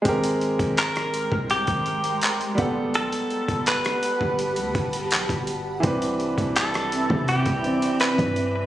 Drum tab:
HH |xxxxxxx-xxxxxxx-|xxxxxxx-xxxxxxx-|xxxxxxx-xxxxxxx-|
CP |----x-------x---|----x-------x---|----x-------x---|
SD |-----r----------|-----r----------|-----r----------|
BD |o--o---o-o----o-|---o---o--o--o--|o--o---o-o---o--|